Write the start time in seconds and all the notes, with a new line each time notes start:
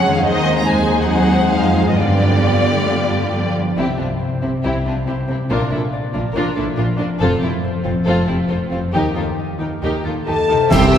Already playing: F2 F#3 G#3 C#4 G#4 C#5 F#5
0.08 D#3
0.12 F3 D#4 F5
0.17 G#4
0.22 D#3 G#3 D#4 C5
0.26 D#2 G#3 C4 G#4 C5 D#5
0.57 A#3 A#5
0.66 G#3 D#4 G#4 C5 G#5
1.01 F#3 F#5
1.12 F#3 F#5
1.55 F2 F3 G#3 F5
1.82 G2
1.87 D#3 F4 D#5
1.91 B4
1.96 F3 D5
2.00 G2 D3 B3 F4 G4 D5
2.44 D3
2.78 A3
2.88 G3
3.23 F3
3.33 F3
3.77 C2 C3 C4 E4 G4
3.98 C2 C3 C4 D4 E4 F4
4.20 C5
4.42 C2 C3 C4 E4 G4
4.63 C2 C3 G3 C4 E4 G4
4.85 C2 C3 C4 D4 E4 F4
5.07 C2 C3 C4 E4 G4 C5
5.28 C2 C3 C4 E4 G4
5.49 A#1 A#2 D4 F4 A#4
5.70 A#1 A#2 D4 E4 F4 A4
5.93 D5
6.14 A#1 A#2 D4 F4 A#4
6.33 A#1 A#2 F3 D4 F4 A#4
6.55 A#1 A#2 D4 E4 F4 A4
6.76 A#1 A#2 D4 F4 A#4 D5
6.97 A#1 A#2 D4 F4 A#4
7.19 F1 F2 F3 C4 F4 A4
7.40 F1 F2 C4 E4 F4 G4
7.64 C5
7.83 F1 F2 C4 F4 A4
8.03 F2 C4 F4 A4
8.07 F1 C4
8.25 F1 F2 C4 E4 F4 G4
8.48 F1 F2 C4 F4 A4 C5
8.71 F1 F2 C4 F4 A4
8.94 D#2 D#3 D#4 G4 A#4
9.15 D#2 D#4 F4 G4 A4
9.39 D#5
9.59 D#2 D#4 G4 A#4
9.82 D#2 A#3 D#4 G4 A#4
10.04 D#2 D#4 F4 G4 A4
10.26 D#2 D#4 G4 A4 A#4 D#5 A5
10.49 D#2 D#4 G4 A#4
10.53 C3
10.57 G4
10.62 C5
10.66 G4 E5
10.70 C2 G2 C3 C4 E4 G4 E5 G5 C6, concert bass drum, snare, crash
10.94 C4 E4 E5 E6, snare